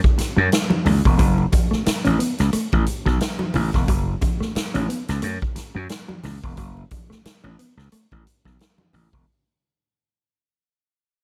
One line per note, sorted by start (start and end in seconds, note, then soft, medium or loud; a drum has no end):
0.04 kick medium
0.18 muted clean electric guitar stroke medium
0.18 muted slap bass stroke soft
0.18 snare soft
0.18 closed hi-hat medium
0.37 0.48 F#2 loud
0.37 0.47 F#3 medium
0.51 muted clean electric guitar stroke soft
0.51 snare loud
0.51 closed hi-hat medium
0.70 0.80 F#3 medium
0.70 muted conga soft
0.70 high conga medium
0.85 1.00 C#2 loud
0.85 0.98 E3 medium
0.85 open hi-hat medium
0.85 low conga loud
1.05 1.16 E1 medium
1.05 kick loud
1.05 low conga medium
1.19 1.45 F#1 loud
1.19 1.32 F#3 loud
1.19 kick loud
1.19 closed hi-hat loud
1.19 muted conga soft
1.38 muted conga soft
1.52 muted clean electric guitar stroke soft
1.52 kick loud
1.52 closed hi-hat medium
1.52 high conga medium
1.71 1.82 A3 medium
1.71 muted slap bass stroke soft
1.71 snare soft
1.86 muted clean electric guitar stroke soft
1.86 muted slap bass stroke soft
1.86 snare loud
1.86 closed hi-hat loud
2.05 2.17 A1 medium
2.05 2.15 C#4 medium
2.05 closed hi-hat medium
2.05 muted conga soft
2.05 high conga medium
2.19 2.33 B3 medium
2.19 closed hi-hat loud
2.38 2.51 C#2 medium
2.38 snare soft
2.38 closed hi-hat medium
2.53 2.66 A3 medium
2.53 muted slap bass stroke soft
2.53 closed hi-hat medium
2.53 muted conga soft
2.72 2.84 A1 medium
2.72 kick loud
2.72 muted conga soft
2.86 muted clean electric guitar stroke medium
2.86 closed hi-hat medium
3.06 3.18 B1 medium
3.06 3.16 F#3 medium
3.06 kick medium
3.06 snare soft
3.21 muted clean electric guitar stroke soft
3.21 snare loud
3.21 closed hi-hat medium
3.21 muted conga soft
3.39 3.50 F#3 medium
3.39 muted conga soft
3.39 high conga medium
3.54 3.69 A1 loud
3.54 3.68 E3 medium
3.54 open hi-hat medium
3.54 low conga loud
3.73 3.85 E1 medium
3.73 kick medium
3.73 snare soft
3.73 low conga medium
3.88 4.14 F#1 loud
3.88 4.01 F#3 loud
3.88 kick loud
3.88 closed hi-hat loud
3.88 muted conga soft
4.21 muted clean electric guitar stroke soft
4.21 kick loud
4.21 closed hi-hat medium
4.21 high conga medium
4.41 4.51 A3 medium
4.41 muted slap bass stroke soft
4.41 snare soft
4.55 muted clean electric guitar stroke soft
4.55 muted slap bass stroke soft
4.55 snare loud
4.55 closed hi-hat loud
4.55 muted conga soft
4.74 4.86 A1 medium
4.74 4.85 C#4 medium
4.74 closed hi-hat medium
4.74 muted conga soft
4.74 high conga medium
4.89 5.02 B3 medium
4.89 closed hi-hat medium
5.08 5.20 C#2 medium
5.08 snare soft
5.08 closed hi-hat medium
5.22 5.37 F#2 loud
5.22 5.36 A3 medium
5.22 closed hi-hat medium
5.42 kick medium
5.42 muted conga soft
5.56 muted clean electric guitar stroke medium
5.56 muted slap bass stroke soft
5.56 snare soft
5.56 closed hi-hat medium
5.75 5.87 F#2 medium
5.75 5.85 F#3 medium
5.89 muted clean electric guitar stroke soft
5.89 snare loud
5.89 closed hi-hat medium
5.89 muted conga soft
6.08 6.19 F#3 medium
6.08 high conga medium
6.23 6.38 C#2 loud
6.23 6.37 E3 medium
6.23 snare soft
6.23 open hi-hat medium
6.23 low conga medium
6.44 6.55 E1 medium
6.44 kick medium
6.44 low conga medium
6.57 6.83 F#1 loud
6.57 6.71 F#3 medium
6.57 kick loud
6.57 closed hi-hat loud
6.57 muted conga soft
6.77 muted conga soft
6.91 muted clean electric guitar stroke soft
6.91 kick medium
6.91 closed hi-hat medium
6.91 high conga medium
7.10 7.20 A3 medium
7.10 muted slap bass stroke soft
7.10 snare soft
7.25 muted clean electric guitar stroke soft
7.25 muted slap bass stroke soft
7.25 snare loud
7.25 closed hi-hat loud
7.44 7.55 A1 medium
7.44 7.54 C#4 medium
7.44 high conga medium
7.59 7.72 B3 medium
7.59 closed hi-hat medium
7.77 7.88 C#2 medium
7.77 snare soft
7.92 8.05 A3 medium
7.92 closed hi-hat medium
8.11 8.23 A1 medium
8.11 kick medium
8.11 muted conga soft
8.26 muted clean electric guitar stroke soft
8.26 closed hi-hat medium
8.45 8.56 B1 medium
8.45 8.55 F#3 medium
8.45 kick medium
8.45 snare soft
8.45 high conga medium
8.59 muted clean electric guitar stroke soft
8.59 snare loud
8.59 closed hi-hat medium
8.59 muted conga soft
8.78 8.89 F#3 medium
8.78 muted conga soft
8.78 high conga medium
8.93 9.08 A1 loud
8.93 9.06 E3 medium
8.93 open hi-hat medium
8.93 low conga loud
9.12 9.24 E1 medium
9.12 kick medium
9.12 low conga medium